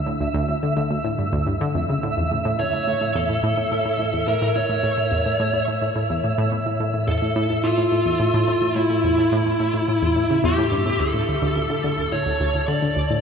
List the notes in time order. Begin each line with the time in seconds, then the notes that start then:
Already playing: E5
0.06 A2
0.20 D2
0.34 D2
0.48 D2
0.63 D3
0.77 D3
0.91 D2
1.05 A2
1.18 G2
1.33 D2
1.47 G2
1.61 D3
1.75 F2
1.89 C#3
2.03 A2
2.17 E2
2.31 A2
2.45 A2
2.59 A2 C#5
2.73 A2
2.87 A2
3.01 A2
3.15 E2 A4
3.29 A2
3.43 A2
3.57 A2
3.72 A2
3.86 A2
4.00 A2
4.14 E2
4.28 A2 A#4
4.42 A2
4.56 A2 C#5
4.70 A2
4.83 A2
4.98 A2
5.12 E2
5.26 A2
5.40 A2
5.54 A2
5.68 A2
5.82 A2
5.96 A2
6.10 E2
6.24 A2
6.38 A2
6.52 A2
6.66 A2
6.80 A2
6.94 A2
7.08 E2 A4
7.22 A2
7.36 A2
7.50 A2
7.64 A2 F4
7.78 A2
7.92 A2
8.06 E2
8.20 A2
8.34 A2
8.48 A2
8.62 A2
8.76 A2 E4
8.90 A2
9.04 E2
9.18 A2
9.32 A2
9.46 A2
9.60 A2
9.74 A2
9.88 A2
10.02 E2
10.16 A2
10.30 C#3
10.44 E2 G4
10.58 A2
10.72 G2
10.86 A2
11.00 D2 A4 A5
11.14 A2
11.28 D2
11.42 D2
11.56 D2
11.70 D3
11.84 D3
11.98 D2
12.12 A2 C#5
12.26 D2
12.40 D2
12.54 D2
12.68 D3 D5
12.82 D3
12.96 D2
13.10 A2